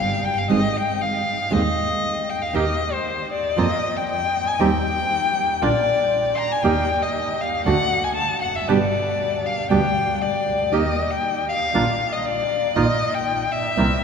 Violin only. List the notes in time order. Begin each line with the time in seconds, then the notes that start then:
Already playing: F5
0.24 G5
0.37 F5
0.50 D#5
0.76 G5
1.01 F5
1.52 D#5
2.29 G5
2.42 F5
2.55 D#5
2.93 C5
3.32 D5
3.58 D#5
3.96 G5
4.09 G5
4.47 G#5
4.59 G5
5.62 D5
6.35 A#5 C6
6.51 G#5
6.63 G5
7.02 D#5
7.41 F5
7.66 F#5
8.04 G#5
8.16 A5
8.42 F#5
8.55 E5
8.68 D5
9.46 F5
9.71 G5
10.21 D5
10.72 D#5
11.10 G5
11.48 F5
12.12 D#5
12.25 D5
12.75 D#5
13.14 G5
13.52 E5